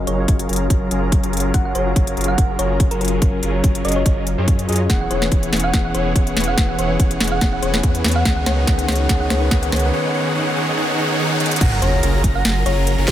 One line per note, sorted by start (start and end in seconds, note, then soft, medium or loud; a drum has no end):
0.00 0.16 F#3 medium
0.00 4.86 F#3 medium
0.00 0.18 C#4 medium
0.00 8.21 C#4 medium
0.00 0.19 F4 medium
0.00 4.86 F4 medium
0.00 1.55 A#4 medium
0.00 4.86 A#4 medium
0.00 0.20 C#5 medium
0.07 0.26 F#1 medium
0.07 0.26 F#3 medium
0.07 0.26 C#4 medium
0.07 0.26 F4 medium
0.07 0.26 G#4 medium
0.07 0.26 A#4 medium
0.07 0.66 C#5 medium
0.07 closed hi-hat medium
0.16 1.51 F#3 medium
0.16 1.51 C#4 medium
0.16 1.52 F4 medium
0.16 1.53 C#5 medium
0.28 0.47 F#1 medium
0.28 0.47 F#3 loud
0.28 0.47 C#4 medium
0.28 0.47 F4 medium
0.28 0.47 G#4 medium
0.28 0.47 A#4 loud
0.28 kick medium
0.28 closed hi-hat medium
0.39 closed hi-hat medium
0.49 0.68 F#1 medium
0.49 0.66 F#3 medium
0.49 0.66 C#4 medium
0.49 0.66 F4 medium
0.49 0.66 G#4 medium
0.49 0.66 A#4 loud
0.49 closed hi-hat soft
0.53 closed hi-hat medium
0.56 closed hi-hat medium
0.70 0.89 F#1 medium
0.70 0.89 F#3 medium
0.70 0.89 C#4 medium
0.70 0.89 F4 medium
0.70 0.89 G#4 medium
0.70 0.89 A#4 loud
0.70 kick medium
0.70 closed hi-hat medium
0.91 1.21 F#1 loud
0.91 1.21 F#3 loud
0.91 1.21 C#4 medium
0.91 1.21 F4 medium
0.91 1.21 G#4 medium
0.91 1.21 A#4 loud
0.91 closed hi-hat medium
1.12 kick medium
1.12 closed hi-hat medium
1.23 1.52 F#1 loud
1.23 1.52 F#3 loud
1.23 1.52 C#4 medium
1.23 1.52 F4 medium
1.23 1.52 G#4 medium
1.23 1.52 A#4 loud
1.23 closed hi-hat medium
1.33 closed hi-hat soft
1.37 closed hi-hat medium
1.40 closed hi-hat medium
1.53 1.73 F#1 loud
1.53 1.83 F#3 medium
1.53 1.73 F#3 medium
1.53 1.83 C#4 medium
1.53 1.73 C#4 medium
1.53 1.73 F4 medium
1.53 1.84 F4 medium
1.53 1.73 G#4 medium
1.53 1.73 A#4 loud
1.53 1.84 A#4 medium
1.53 1.61 F#5 medium
1.53 kick loud
1.53 closed hi-hat medium
1.65 1.72 F#5 medium
1.75 1.94 F#1 medium
1.75 1.94 F#3 medium
1.75 1.94 C#4 medium
1.75 1.94 F4 medium
1.75 1.94 G#4 medium
1.75 1.94 A#4 medium
1.75 1.90 C#5 medium
1.75 closed hi-hat medium
1.84 3.19 F#3 medium
1.84 3.19 C#4 medium
1.84 3.20 F4 medium
1.84 3.21 C#5 medium
1.96 2.15 F#1 medium
1.96 2.15 F#3 loud
1.96 2.15 C#4 medium
1.96 2.15 F4 medium
1.96 2.15 G#4 medium
1.96 2.15 A#4 loud
1.96 kick medium
1.96 closed hi-hat medium
2.07 closed hi-hat medium
2.17 2.36 F#1 medium
2.17 2.34 F#3 medium
2.17 2.34 C#4 medium
2.17 2.34 F4 medium
2.17 2.34 G#4 medium
2.17 2.34 A#4 loud
2.17 closed hi-hat soft
2.21 closed hi-hat medium
2.24 closed hi-hat medium
2.28 2.57 F#5 medium
2.38 2.57 F#1 medium
2.38 2.57 F#3 medium
2.38 2.57 C#4 medium
2.38 2.57 F4 medium
2.38 2.57 G#4 medium
2.38 2.57 A#4 loud
2.38 kick medium
2.38 closed hi-hat medium
2.59 2.89 F#1 loud
2.59 2.89 F#3 loud
2.59 2.89 C#4 medium
2.59 2.89 F4 medium
2.59 2.89 G#4 medium
2.59 2.89 A#4 loud
2.59 2.89 C#5 medium
2.59 closed hi-hat medium
2.80 kick medium
2.80 closed hi-hat medium
2.91 3.20 F#1 loud
2.91 3.20 F#3 loud
2.91 3.20 C#4 medium
2.91 3.20 F4 medium
2.91 3.20 G#4 medium
2.91 2.97 A#4 medium
2.91 3.20 A#4 loud
2.91 closed hi-hat medium
3.01 3.08 A#4 medium
3.01 closed hi-hat soft
3.05 closed hi-hat medium
3.08 closed hi-hat medium
3.21 3.41 F#1 loud
3.21 3.51 F#3 medium
3.21 3.41 F#3 medium
3.21 3.51 C#4 medium
3.21 3.41 C#4 medium
3.21 3.41 F4 medium
3.21 3.52 F4 medium
3.21 3.41 G#4 medium
3.21 3.41 A#4 loud
3.21 3.52 A#4 medium
3.21 kick loud
3.21 closed hi-hat medium
3.43 3.62 F#1 medium
3.43 3.62 F#3 medium
3.43 3.62 C#4 medium
3.43 3.62 F4 medium
3.43 3.62 G#4 medium
3.43 3.62 A#4 medium
3.43 closed hi-hat medium
3.52 4.66 F#3 medium
3.52 4.66 C#4 medium
3.52 4.67 F4 medium
3.56 4.68 C#5 medium
3.64 3.83 F#1 loud
3.64 3.83 F#3 medium
3.64 3.82 C#4 medium
3.64 3.82 F4 medium
3.64 3.83 G#4 medium
3.64 3.83 A#4 loud
3.64 kick loud
3.64 closed hi-hat medium
3.75 closed hi-hat medium
3.85 4.04 F#1 medium
3.85 4.02 F#3 medium
3.85 4.02 C#4 medium
3.85 4.02 F4 medium
3.85 4.02 G#4 medium
3.85 4.02 A#4 medium
3.85 3.94 D#5 medium
3.85 closed hi-hat soft
3.88 closed hi-hat medium
3.92 closed hi-hat medium
3.96 4.02 C#5 medium
4.06 4.36 F#1 medium
4.06 4.24 F#3 medium
4.06 4.24 C#4 medium
4.06 4.24 F4 medium
4.06 4.24 G#4 medium
4.06 4.24 A#4 loud
4.06 4.13 C#5 medium
4.06 kick loud
4.06 closed hi-hat medium
4.27 closed hi-hat medium
4.38 4.67 F#2 loud
4.38 4.66 F#3 medium
4.38 4.66 C#4 medium
4.38 4.66 F4 medium
4.38 4.66 G#4 medium
4.38 4.66 C#5 medium
4.48 kick medium
4.48 closed hi-hat medium
4.59 closed hi-hat medium
4.68 4.88 F#2 loud
4.68 4.87 F#3 medium
4.68 4.80 F#3 medium
4.68 4.87 C#4 medium
4.68 4.80 C#4 medium
4.68 4.80 F4 medium
4.68 4.88 F4 medium
4.68 4.80 G#4 medium
4.68 4.88 G#4 loud
4.68 4.80 D#5 loud
4.68 closed hi-hat soft
4.72 closed hi-hat medium
4.76 closed hi-hat medium
4.89 5.09 E1 medium
4.89 5.19 E3 medium
4.89 5.08 E3 medium
4.89 8.22 E3 medium
4.89 9.89 B3 medium
4.89 5.19 C#4 medium
4.89 5.08 E4 medium
4.89 5.08 G#4 medium
4.89 8.22 G#4 medium
4.89 5.20 G#4 medium
4.89 5.08 C#5 medium
4.89 4.97 F#5 medium
4.89 5.08 F#5 medium
4.89 kick loud
4.89 snare soft
4.89 closed hi-hat medium
4.89 riser medium
5.01 5.07 F#5 medium
5.11 5.30 E1 loud
5.11 5.29 E3 medium
5.11 5.29 E4 medium
5.11 5.29 G#4 medium
5.11 5.26 C#5 medium
5.11 5.29 C#5 medium
5.11 5.29 F#5 medium
5.11 closed hi-hat medium
5.20 5.71 E3 medium
5.20 5.72 B3 medium
5.20 5.72 C#4 medium
5.20 5.73 B4 medium
5.20 snare soft
5.32 5.51 E1 medium
5.32 5.50 E3 medium
5.32 5.50 E4 medium
5.32 5.50 G#4 medium
5.32 5.50 C#5 medium
5.32 5.50 F#5 loud
5.32 kick medium
5.32 closed hi-hat medium
5.43 closed hi-hat medium
5.53 5.72 E1 loud
5.53 5.70 E3 medium
5.53 5.70 E4 medium
5.53 5.70 G#4 medium
5.53 5.70 C#5 medium
5.53 5.70 F#5 medium
5.53 snare medium
5.53 closed hi-hat soft
5.56 closed hi-hat medium
5.60 closed hi-hat medium
5.64 5.72 F#5 medium
5.73 5.93 E1 medium
5.73 6.03 E3 medium
5.73 5.92 E3 medium
5.73 6.03 B3 medium
5.73 6.03 C#4 medium
5.73 5.92 E4 medium
5.73 5.92 G#4 medium
5.73 6.04 G#4 medium
5.73 5.92 C#5 medium
5.73 5.81 F#5 medium
5.73 5.92 F#5 loud
5.73 kick medium
5.73 snare medium
5.73 closed hi-hat medium
5.85 5.91 F#5 medium
5.95 6.14 E1 loud
5.95 6.13 E3 medium
5.95 6.13 E4 medium
5.95 6.13 G#4 medium
5.95 6.10 C#5 medium
5.95 6.13 C#5 medium
5.95 6.13 F#5 medium
5.95 closed hi-hat medium
6.04 6.55 E3 medium
6.04 6.56 B3 medium
6.04 6.56 C#4 medium
6.08 6.57 B4 medium
6.16 6.35 E1 loud
6.16 6.34 E3 medium
6.16 6.34 E4 medium
6.16 6.34 G#4 medium
6.16 6.34 C#5 medium
6.16 6.34 F#5 loud
6.16 kick medium
6.16 closed hi-hat medium
6.27 closed hi-hat medium
6.37 6.56 E1 loud
6.37 6.54 E3 medium
6.37 6.54 E4 medium
6.37 6.54 G#4 medium
6.37 6.54 C#5 medium
6.37 6.54 F#5 loud
6.37 snare medium
6.37 closed hi-hat soft
6.40 closed hi-hat medium
6.44 closed hi-hat medium
6.48 6.56 F#5 medium
6.57 6.77 E1 loud
6.57 6.87 E3 medium
6.57 6.76 E3 medium
6.57 6.87 B3 medium
6.57 6.87 C#4 medium
6.57 6.76 E4 medium
6.57 6.76 G#4 medium
6.57 6.88 G#4 medium
6.57 6.76 C#5 medium
6.57 6.65 F#5 medium
6.57 6.76 F#5 loud
6.57 kick loud
6.57 snare medium
6.57 closed hi-hat medium
6.69 6.75 F#5 medium
6.79 6.98 E1 medium
6.79 6.97 E3 medium
6.79 6.97 E4 medium
6.79 6.97 G#4 medium
6.79 6.97 C#5 medium
6.79 6.94 C#5 medium
6.79 6.97 F#5 medium
6.79 closed hi-hat medium
6.88 7.39 E3 medium
6.88 7.40 B3 medium
6.88 7.40 C#4 medium
6.92 7.41 B4 medium
7.00 7.19 E1 medium
7.00 7.18 E3 medium
7.00 7.18 E4 medium
7.00 7.18 G#4 medium
7.00 7.18 C#5 medium
7.00 7.18 F#5 loud
7.00 kick loud
7.00 closed hi-hat medium
7.11 closed hi-hat medium
7.20 7.40 E1 loud
7.20 7.38 E3 medium
7.20 7.38 E4 medium
7.20 7.38 G#4 medium
7.20 7.38 C#5 medium
7.20 7.38 F#5 medium
7.20 snare medium
7.20 closed hi-hat soft
7.24 closed hi-hat medium
7.27 closed hi-hat medium
7.32 7.40 F#5 medium
7.40 7.61 E1 medium
7.40 7.70 E3 medium
7.40 7.60 E3 medium
7.40 7.71 B3 medium
7.40 7.71 C#4 medium
7.40 7.60 E4 medium
7.40 7.60 G#4 medium
7.40 7.71 G#4 medium
7.40 7.60 C#5 medium
7.40 7.49 F#5 medium
7.40 7.60 F#5 loud
7.40 kick loud
7.40 snare medium
7.40 closed hi-hat medium
7.53 7.59 F#5 medium
7.62 7.82 E1 loud
7.62 7.81 E3 medium
7.62 7.81 E4 medium
7.62 7.81 G#4 medium
7.62 7.77 C#5 medium
7.62 7.81 C#5 medium
7.62 7.81 F#5 medium
7.62 closed hi-hat medium
7.72 8.23 E3 medium
7.72 8.23 B3 medium
7.72 8.24 C#4 medium
7.72 snare medium
7.76 8.25 B4 medium
7.83 8.02 E2 loud
7.83 8.02 E3 medium
7.83 8.02 E4 medium
7.83 8.02 G#4 medium
7.83 8.02 C#5 medium
7.83 8.02 F#5 loud
7.83 kick medium
7.83 closed hi-hat medium
7.95 closed hi-hat medium
8.04 8.24 E2 loud
8.04 8.22 E3 medium
8.04 8.22 E4 medium
8.04 8.22 G#4 medium
8.04 8.22 C#5 medium
8.04 8.22 F#5 loud
8.04 snare medium
8.04 closed hi-hat soft
8.08 closed hi-hat medium
8.11 closed hi-hat medium
8.16 8.24 F#5 medium
8.24 8.44 C#2 loud
8.24 9.92 C#3 medium
8.24 8.54 D#3 medium
8.24 8.44 D#3 medium
8.24 8.55 B3 medium
8.24 8.55 C#4 medium
8.24 8.44 D#4 medium
8.24 9.92 D#4 medium
8.24 9.92 F#4 medium
8.24 8.44 G#4 medium
8.24 8.55 G#4 medium
8.24 8.44 C#5 medium
8.24 8.33 F#5 medium
8.24 8.44 F#5 loud
8.24 kick loud
8.24 snare medium
8.24 closed hi-hat medium
8.36 8.43 F#5 medium
8.46 8.65 C#2 loud
8.46 8.65 D#3 medium
8.46 8.65 D#4 medium
8.46 8.65 G#4 medium
8.46 8.61 C#5 medium
8.46 8.65 C#5 medium
8.46 8.65 F#5 medium
8.46 snare medium
8.46 closed hi-hat medium
8.56 8.65 D#3 medium
8.56 8.65 B3 medium
8.56 8.66 C#4 medium
8.60 8.67 B4 medium
8.66 8.86 C#2 loud
8.66 8.96 D#3 medium
8.66 8.86 D#3 loud
8.66 8.97 B3 medium
8.66 8.97 C#4 medium
8.66 8.86 D#4 medium
8.66 8.86 G#4 medium
8.66 8.97 G#4 medium
8.66 8.86 C#5 medium
8.66 8.74 F#5 medium
8.66 8.86 F#5 loud
8.66 kick loud
8.66 snare medium
8.66 closed hi-hat medium
8.78 8.85 F#5 medium
8.78 closed hi-hat medium
8.88 9.07 C#2 loud
8.88 9.07 D#3 medium
8.88 9.07 D#4 medium
8.88 9.07 G#4 medium
8.88 9.03 C#5 medium
8.88 9.07 C#5 medium
8.88 9.07 F#5 medium
8.88 snare medium
8.88 closed hi-hat medium
8.92 closed hi-hat medium
8.95 9.07 D#3 medium
8.95 9.07 B3 medium
8.95 closed hi-hat medium
9.00 9.08 C#4 medium
9.00 9.09 B4 medium
9.08 9.28 C#2 medium
9.08 9.38 D#3 medium
9.08 9.28 D#3 loud
9.08 9.39 B3 medium
9.08 9.39 C#4 medium
9.08 9.28 D#4 medium
9.08 9.28 G#4 medium
9.08 9.39 G#4 medium
9.08 9.28 C#5 medium
9.08 9.16 F#5 medium
9.08 9.28 F#5 loud
9.08 kick medium
9.08 snare medium
9.08 closed hi-hat medium
9.20 9.27 F#5 medium
9.30 9.49 C#2 loud
9.30 9.49 D#3 medium
9.30 9.49 D#4 medium
9.30 9.49 G#4 medium
9.30 9.45 C#5 loud
9.30 9.49 C#5 medium
9.30 9.49 F#5 medium
9.30 snare loud
9.30 closed hi-hat medium
9.40 9.49 D#3 medium
9.40 9.49 B3 medium
9.40 9.50 C#4 medium
9.40 9.51 B4 medium
9.50 9.70 C#2 loud
9.50 9.80 D#3 medium
9.50 9.70 D#3 loud
9.50 9.81 B3 medium
9.50 9.81 C#4 medium
9.50 9.70 D#4 medium
9.50 9.70 G#4 medium
9.50 9.81 G#4 medium
9.50 9.70 C#5 medium
9.50 9.58 F#5 medium
9.50 9.70 F#5 loud
9.50 kick medium
9.50 snare medium
9.50 closed hi-hat medium
9.62 9.69 F#5 medium
9.62 closed hi-hat medium
9.72 9.91 C#2 loud
9.72 9.91 D#3 medium
9.72 9.91 D#4 medium
9.72 9.91 G#4 medium
9.72 9.87 C#5 medium
9.72 9.91 C#5 medium
9.72 9.91 F#5 medium
9.72 snare medium
9.72 closed hi-hat soft
9.76 closed hi-hat medium
9.79 9.91 D#3 medium
9.79 9.91 B3 medium
9.79 closed hi-hat medium
9.84 9.92 C#4 medium
9.84 9.93 B4 loud
9.93 10.12 D#3 loud
9.93 10.12 D#4 medium
9.93 10.12 G#4 medium
9.93 10.12 C#5 medium
9.93 10.12 F#5 loud
10.14 10.33 D#3 loud
10.14 10.33 D#4 medium
10.14 10.33 G#4 medium
10.14 10.33 C#5 medium
10.14 10.33 F#5 loud
10.35 10.54 D#3 loud
10.35 10.54 D#4 medium
10.35 10.54 G#4 medium
10.35 10.54 C#5 medium
10.35 10.54 F#5 loud
10.56 10.75 D#3 loud
10.56 10.75 D#4 medium
10.56 10.75 G#4 medium
10.56 10.75 C#5 medium
10.56 10.75 F#5 loud
10.77 10.96 D#3 loud
10.77 10.96 D#4 medium
10.77 10.96 G#4 medium
10.77 10.96 C#5 medium
10.77 10.96 F#5 loud
10.98 11.17 D#3 loud
10.98 11.17 D#4 medium
10.98 11.17 G#4 medium
10.98 11.17 C#5 medium
10.98 11.17 F#5 loud
11.19 11.38 D#3 loud
11.19 11.38 D#4 medium
11.19 11.38 G#4 medium
11.19 11.38 C#5 medium
11.19 11.38 F#5 loud
11.40 11.59 D#3 loud
11.40 11.59 D#4 medium
11.40 11.59 G#4 medium
11.40 11.59 C#5 medium
11.40 11.59 F#5 loud
11.40 closed hi-hat medium
11.46 closed hi-hat medium
11.51 closed hi-hat medium
11.56 closed hi-hat medium
11.61 11.80 F#1 loud
11.61 11.80 F#3 loud
11.61 11.80 C#4 medium
11.61 11.80 F4 medium
11.61 11.80 G#4 medium
11.61 11.80 A#4 loud
11.61 11.68 F#5 medium
11.61 11.80 A#5 loud
11.61 kick loud
11.61 closed hi-hat medium
11.61 crash loud
11.61 sub drop medium
11.72 11.79 F#5 medium
11.82 12.01 F#1 medium
11.82 12.01 F#3 medium
11.82 12.01 C#4 medium
11.82 12.01 F4 medium
11.82 12.01 G#4 medium
11.82 12.01 A#4 medium
11.82 11.97 C#5 medium
11.82 12.01 A#5 medium
11.82 closed hi-hat medium
12.03 12.22 F#1 medium
12.03 12.22 F#3 loud
12.03 12.22 C#4 medium
12.03 12.22 F4 medium
12.03 12.22 G#4 medium
12.03 12.22 A#4 loud
12.03 12.22 A#5 loud
12.03 closed hi-hat medium
12.24 12.43 F#1 loud
12.24 12.41 F#3 medium
12.24 12.41 C#4 medium
12.24 12.41 F4 medium
12.24 12.41 G#4 medium
12.24 12.41 A#4 loud
12.24 12.41 A#5 loud
12.24 kick medium
12.24 closed hi-hat medium
12.35 12.64 F#5 medium
12.45 12.64 F#1 medium
12.45 12.64 F#3 medium
12.45 12.64 C#4 medium
12.45 12.64 F4 medium
12.45 12.64 G#4 medium
12.45 12.64 A#4 loud
12.45 12.64 A#5 loud
12.45 snare loud
12.45 closed hi-hat medium
12.66 12.96 F#1 loud
12.66 12.96 F#3 loud
12.66 12.95 C#4 medium
12.66 12.95 F4 medium
12.66 12.95 G#4 loud
12.66 12.95 A#4 loud
12.66 13.12 C#5 medium
12.66 12.95 A#5 loud
12.66 closed hi-hat medium
12.87 closed hi-hat medium
12.98 13.12 F#1 loud
12.98 13.12 F#3 loud
12.98 13.12 C#4 medium
12.98 13.12 F4 medium
12.98 13.12 G#4 medium
12.98 13.12 A#4 loud
12.98 13.12 A#5 loud
13.08 kick loud
13.08 snare medium
13.08 closed hi-hat medium